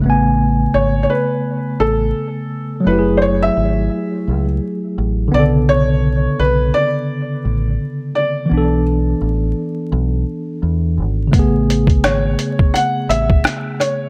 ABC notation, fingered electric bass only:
X:1
M:4/4
L:1/8
Q:"Swing 16ths" 1/4=85
K:A
V:1 name="Fingered electric bass" clef=bass
A,,,2 G,,, z2 A,,, z2 | F,,,2 G,,, z C,, z A,,, B,,,- | B,,,2 B,,, z2 A,,, z2 | B,,,2 A,,, z B,,, z E,, G,,, |
A,,,2 G,,, z2 A,,, z2 |]